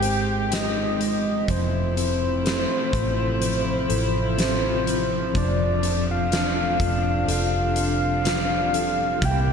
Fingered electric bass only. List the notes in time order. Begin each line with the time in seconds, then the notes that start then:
Already playing: G#1
1.48 F1
2.93 A1
3.90 A1
5.35 F1
6.80 F1
7.28 F1
9.22 C2